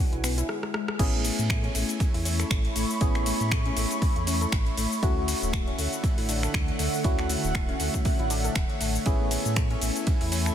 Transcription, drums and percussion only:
0.13 closed hi-hat soft
0.24 finger snap medium
0.24 open hi-hat loud
0.24 cabasa medium
0.38 closed hi-hat medium
0.38 cabasa soft
0.49 cross-stick medium
0.63 cross-stick medium
0.74 cross-stick medium
0.88 cross-stick medium
0.99 kick loud
0.99 closed hi-hat medium
0.99 ride medium
0.99 crash loud
0.99 cabasa soft
1.25 open hi-hat loud
1.25 ride medium
1.25 cabasa medium
1.39 closed hi-hat soft
1.39 cabasa soft
1.50 finger snap loud
1.50 kick loud
1.50 closed hi-hat medium
1.50 cabasa soft
1.64 closed hi-hat soft
1.75 open hi-hat loud
1.75 ride medium
1.75 cabasa medium
1.89 closed hi-hat medium
1.89 cabasa soft
2.00 kick loud
2.00 closed hi-hat medium
2.00 ride medium
2.00 cabasa soft
2.14 open hi-hat medium
2.25 open hi-hat loud
2.25 ride medium
2.25 cabasa medium
2.39 finger snap soft
2.39 closed hi-hat medium
2.39 cabasa soft
2.51 finger snap loud
2.51 kick loud
2.51 closed hi-hat medium
2.51 ride medium
2.51 cabasa soft
2.65 closed hi-hat soft
2.76 open hi-hat loud
2.76 ride medium
2.76 cabasa medium
2.90 cabasa soft
3.01 kick loud
3.01 closed hi-hat medium
3.01 ride medium
3.01 cabasa soft
3.15 finger snap soft
3.15 closed hi-hat soft
3.26 open hi-hat loud
3.26 ride medium
3.26 cabasa medium
3.40 closed hi-hat soft
3.40 cabasa soft
3.51 finger snap loud
3.51 kick loud
3.51 closed hi-hat medium
3.51 cabasa soft
3.65 closed hi-hat soft
3.77 open hi-hat loud
3.77 ride medium
3.77 cabasa medium
3.91 closed hi-hat medium
3.91 cabasa soft
4.02 kick loud
4.02 open hi-hat medium
4.02 ride medium
4.02 cabasa soft
4.16 closed hi-hat soft
4.27 open hi-hat loud
4.27 ride medium
4.27 cabasa medium
4.41 closed hi-hat medium
4.41 cabasa soft
4.52 finger snap loud
4.52 kick loud
4.52 closed hi-hat medium
4.52 ride medium
4.52 cabasa soft
4.66 closed hi-hat soft
4.77 open hi-hat loud
4.77 ride medium
4.77 cabasa medium
4.92 cabasa soft
5.03 kick loud
5.03 closed hi-hat medium
5.03 ride medium
5.03 cabasa soft
5.28 open hi-hat loud
5.28 ride medium
5.28 cabasa medium
5.42 closed hi-hat soft
5.42 cabasa soft
5.53 finger snap loud
5.53 kick loud
5.53 closed hi-hat medium
5.53 cabasa soft
5.68 closed hi-hat soft
5.79 open hi-hat loud
5.79 ride medium
5.79 cabasa medium
5.93 closed hi-hat medium
5.93 cabasa soft
6.04 kick loud
6.04 closed hi-hat medium
6.04 ride medium
6.04 cabasa soft
6.18 open hi-hat medium
6.29 open hi-hat loud
6.29 ride medium
6.29 cabasa medium
6.43 finger snap soft
6.43 closed hi-hat medium
6.43 cabasa soft
6.54 finger snap loud
6.54 kick loud
6.54 closed hi-hat medium
6.54 ride medium
6.54 cabasa soft
6.68 closed hi-hat soft
6.79 open hi-hat loud
6.79 ride medium
6.79 cabasa medium
6.94 cabasa soft
7.04 kick loud
7.04 closed hi-hat medium
7.04 ride medium
7.04 cabasa soft
7.18 finger snap soft
7.18 closed hi-hat soft
7.30 open hi-hat loud
7.30 ride medium
7.30 cabasa medium
7.44 closed hi-hat soft
7.44 cabasa soft
7.55 finger snap loud
7.55 kick loud
7.55 closed hi-hat medium
7.55 ride medium
7.69 closed hi-hat soft
7.80 open hi-hat loud
7.80 ride medium
7.80 cabasa medium
7.94 kick medium
7.94 closed hi-hat medium
7.94 cabasa soft
8.05 kick loud
8.05 open hi-hat medium
8.05 ride medium
8.05 cabasa soft
8.19 closed hi-hat soft
8.30 open hi-hat loud
8.30 ride medium
8.30 cabasa medium
8.44 closed hi-hat medium
8.44 cabasa soft
8.55 finger snap loud
8.55 kick loud
8.55 closed hi-hat medium
8.55 ride medium
8.55 cabasa soft
8.70 closed hi-hat soft
8.81 open hi-hat loud
8.81 ride medium
8.81 cabasa medium
8.95 cabasa soft
9.06 kick loud
9.06 closed hi-hat medium
9.06 ride medium
9.06 cabasa soft
9.31 open hi-hat loud
9.31 ride medium
9.31 cabasa medium
9.45 closed hi-hat soft
9.45 cabasa soft
9.56 finger snap loud
9.56 kick loud
9.56 closed hi-hat medium
9.56 ride medium
9.56 cabasa soft
9.70 closed hi-hat soft
9.82 open hi-hat loud
9.82 ride medium
9.82 cabasa medium
9.96 closed hi-hat soft
9.96 cabasa soft
10.07 kick loud
10.07 closed hi-hat medium
10.07 ride medium
10.07 cabasa soft
10.21 open hi-hat medium
10.32 open hi-hat loud
10.32 ride medium
10.32 cabasa medium
10.46 finger snap soft
10.46 closed hi-hat medium
10.46 cabasa soft

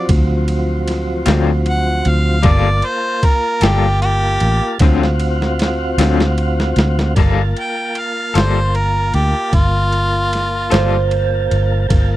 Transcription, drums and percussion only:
0.09 kick loud
0.09 ride medium
0.48 ride medium
0.88 snare soft
0.88 ride medium
1.26 snare loud
1.26 ride medium
1.66 ride medium
2.05 ride medium
2.43 kick loud
2.43 ride medium
2.82 ride medium
3.23 kick medium
3.23 ride medium
3.61 snare loud
3.61 ride medium
4.02 ride medium
4.40 ride medium
4.79 kick loud
4.79 snare medium
4.79 ride medium
5.03 snare medium
5.20 ride medium
5.42 snare medium
5.59 snare medium
5.59 ride medium
5.98 snare loud
5.98 ride loud
6.20 snare medium
6.38 ride medium
6.60 snare medium
6.76 snare loud
6.76 ride medium
6.99 snare medium
7.16 kick loud
7.16 ride medium
7.57 ride medium
7.95 ride medium
8.35 snare loud
8.35 ride medium
8.75 ride medium
9.14 ride medium
9.53 kick loud
9.53 ride medium
9.92 ride medium
10.33 snare soft
10.33 ride medium
10.71 snare loud
10.71 ride medium
11.11 ride medium
11.51 ride medium
11.90 kick loud
11.90 ride medium

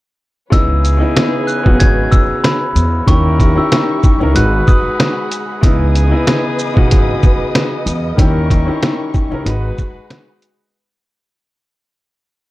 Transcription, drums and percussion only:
0.52 kick loud
0.52 closed hi-hat loud
0.85 closed hi-hat medium
0.85 shaker medium
1.16 snare loud
1.16 snare medium
1.16 closed hi-hat medium
1.48 shaker medium
1.66 kick medium
1.80 kick medium
1.80 closed hi-hat medium
2.12 kick loud
2.12 shaker medium
2.44 snare loud
2.44 snare medium
2.44 closed hi-hat medium
2.76 closed hi-hat medium
2.76 shaker medium
3.08 kick loud
3.08 closed hi-hat loud
3.40 kick medium
3.40 closed hi-hat medium
3.40 shaker medium
3.72 snare loud
3.72 snare medium
3.72 closed hi-hat medium
4.03 kick loud
4.03 shaker medium
4.36 closed hi-hat medium
4.67 kick loud
4.67 shaker medium
5.00 snare loud
5.00 snare medium
5.00 closed hi-hat medium
5.32 closed hi-hat medium
5.32 shaker medium
5.63 kick loud
5.63 closed hi-hat loud
5.95 closed hi-hat medium
5.95 shaker medium
6.27 snare loud
6.27 snare medium
6.27 closed hi-hat medium
6.59 shaker medium
6.77 kick medium
6.91 kick loud
6.91 closed hi-hat medium
7.23 kick loud
7.23 shaker medium
7.55 snare loud
7.55 snare medium
7.55 closed hi-hat medium
7.87 closed hi-hat medium
7.87 shaker medium
8.18 kick loud
8.18 closed hi-hat loud
8.50 kick medium
8.50 closed hi-hat medium
8.50 shaker medium
8.83 snare loud
8.83 snare medium
8.83 closed hi-hat medium
9.14 kick loud
9.14 shaker medium
9.46 closed hi-hat medium
9.78 kick loud
9.78 shaker medium
10.10 snare loud
10.10 snare medium
10.10 closed hi-hat medium
10.42 closed hi-hat medium
10.42 shaker medium

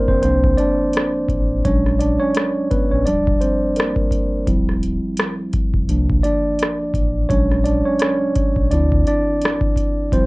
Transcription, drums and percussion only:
0.09 kick medium
0.23 closed hi-hat medium
0.44 kick medium
0.59 closed hi-hat medium
0.94 cross-stick medium
0.94 closed hi-hat medium
1.29 kick medium
1.29 closed hi-hat soft
1.65 kick medium
1.65 closed hi-hat medium
1.86 cross-stick soft
2.01 closed hi-hat medium
2.35 cross-stick loud
2.35 closed hi-hat medium
2.71 kick medium
2.71 closed hi-hat medium
3.07 closed hi-hat medium
3.27 kick medium
3.42 closed hi-hat medium
3.76 cross-stick loud
3.76 closed hi-hat medium
3.96 kick medium
4.11 kick medium
4.11 closed hi-hat medium
4.47 kick loud
4.47 closed hi-hat medium
4.69 cross-stick soft
4.83 closed hi-hat medium
5.17 cross-stick loud
5.17 closed hi-hat medium
5.53 kick medium
5.53 closed hi-hat medium
5.74 kick medium
5.89 closed hi-hat medium
6.10 kick medium
6.24 closed hi-hat medium
6.59 cross-stick medium
6.59 closed hi-hat medium
6.94 kick medium
6.94 closed hi-hat medium
7.30 kick loud
7.30 closed hi-hat medium
7.52 cross-stick soft
7.66 closed hi-hat medium
7.99 cross-stick loud
7.99 closed hi-hat medium
8.35 kick medium
8.35 closed hi-hat medium
8.56 kick medium
8.71 closed hi-hat medium
8.92 kick medium
9.07 closed hi-hat medium
9.41 cross-stick medium
9.41 closed hi-hat medium
9.61 kick medium
9.76 kick medium
9.76 closed hi-hat medium
10.12 kick loud
10.12 closed hi-hat medium

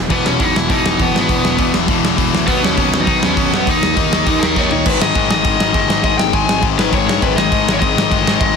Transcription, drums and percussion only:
0.10 kick loud
0.10 crash medium
0.26 snare loud
0.40 kick loud
0.40 open hi-hat medium
0.56 snare loud
0.70 kick loud
0.70 open hi-hat medium
0.86 snare loud
1.00 kick loud
1.00 open hi-hat medium
1.16 snare loud
1.29 kick loud
1.29 open hi-hat medium
1.45 snare loud
1.59 kick loud
1.59 open hi-hat medium
1.74 snare loud
1.88 kick loud
1.88 open hi-hat medium
2.05 snare loud
2.18 kick loud
2.18 open hi-hat medium
2.35 snare loud
2.48 kick loud
2.48 open hi-hat medium
2.64 snare loud
2.78 kick loud
2.78 open hi-hat medium
2.94 snare loud
3.07 kick loud
3.07 open hi-hat medium
3.23 snare loud
3.37 kick loud
3.37 open hi-hat medium
3.54 snare loud
3.67 kick loud
3.67 open hi-hat medium
3.83 snare loud
3.97 kick loud
3.97 open hi-hat medium
4.13 snare loud
4.26 kick loud
4.26 open hi-hat medium
4.43 snare loud
4.56 kick loud
4.56 snare medium
4.71 floor tom medium
4.86 kick loud
4.86 crash loud
4.86 crash medium
5.02 snare loud
5.15 kick loud
5.15 crash medium
5.31 snare loud
5.44 kick loud
5.44 crash medium
5.60 snare loud
5.74 kick loud
5.74 crash medium
5.90 snare loud
6.04 kick loud
6.04 crash medium
6.19 snare loud
6.33 kick loud
6.33 crash medium
6.49 snare loud
6.62 kick loud
6.62 crash medium
6.79 snare loud
6.93 kick loud
6.93 crash medium
7.09 snare loud
7.22 kick loud
7.22 crash medium
7.38 snare loud
7.52 kick loud
7.52 crash medium
7.69 snare loud
7.82 kick loud
7.82 crash medium
7.98 snare loud
8.11 kick loud
8.11 crash medium
8.27 snare loud
8.41 kick loud
8.41 crash medium

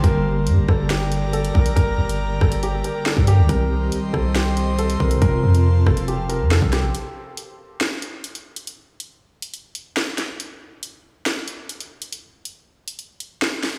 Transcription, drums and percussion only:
0.04 kick loud
0.04 closed hi-hat medium
0.47 closed hi-hat medium
0.69 kick loud
0.69 cross-stick loud
0.90 snare loud
0.90 closed hi-hat medium
1.12 closed hi-hat medium
1.33 closed hi-hat medium
1.45 closed hi-hat medium
1.55 kick loud
1.66 closed hi-hat medium
1.77 kick loud
1.77 closed hi-hat medium
2.09 closed hi-hat medium
2.41 kick loud
2.41 cross-stick loud
2.52 closed hi-hat loud
2.63 closed hi-hat medium
2.84 closed hi-hat medium
3.06 snare loud
3.17 kick loud
3.27 closed hi-hat medium
3.49 kick loud
3.49 closed hi-hat medium
3.92 closed hi-hat medium
4.14 kick loud
4.14 cross-stick loud
4.35 snare loud
4.35 closed hi-hat medium
4.57 closed hi-hat medium
4.79 closed hi-hat medium
4.90 closed hi-hat medium
5.00 kick loud
5.11 closed hi-hat medium
5.22 kick loud
5.22 closed hi-hat medium
5.55 closed hi-hat medium
5.87 kick loud
5.87 cross-stick loud
5.97 closed hi-hat medium
6.08 closed hi-hat medium
6.30 closed hi-hat medium
6.51 snare loud
6.62 kick loud
6.73 cross-stick loud
6.73 snare medium
6.73 closed hi-hat medium
6.95 closed hi-hat medium
7.37 closed hi-hat medium
7.81 snare loud
7.81 closed hi-hat medium
8.02 closed hi-hat medium
8.24 closed hi-hat medium
8.35 closed hi-hat medium
8.56 closed hi-hat medium
8.67 closed hi-hat medium
9.00 closed hi-hat medium
9.42 closed hi-hat medium
9.54 closed hi-hat medium
9.75 closed hi-hat medium
9.97 snare loud
10.18 snare medium
10.18 closed hi-hat medium
10.40 closed hi-hat medium
10.83 closed hi-hat medium
11.26 snare loud
11.26 closed hi-hat medium
11.48 closed hi-hat medium
11.69 closed hi-hat medium
11.80 closed hi-hat medium
12.02 closed hi-hat medium
12.13 closed hi-hat medium
12.45 closed hi-hat medium
12.88 closed hi-hat medium
12.99 closed hi-hat medium
13.20 closed hi-hat medium
13.42 snare loud
13.63 snare medium
13.63 open hi-hat medium

